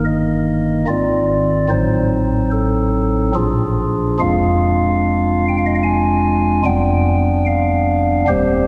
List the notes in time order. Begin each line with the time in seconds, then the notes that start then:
Already playing: G1 G2 D#3 A#3 D#4
0.05 D#5
0.88 G#1 G#2 D#3 C4 F4 D5
1.69 A1 A2 F#3 C4 D#4 C5
2.52 A4
3.35 A#1 A#2 F3 D4 F4 G#4
4.20 F1 F2 G#3 D4 F4 F5
5.48 G5
5.58 F5
5.66 D#5
5.75 F5
5.83 G#5
6.65 F1 F2 G3 B3 D4 G5
7.47 F5
8.28 D#1 D#2 G3 C4 G4 C5